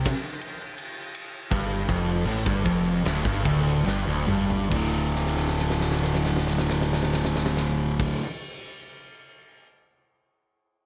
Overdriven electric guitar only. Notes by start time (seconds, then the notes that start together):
1.51 G2
1.88 F2
2.27 A2
2.45 G2
2.65 F2
3.05 D2
3.25 G2
3.45 D2
3.86 G2
4.07 D2
4.28 G2
4.71 D2 A2
4.75 D3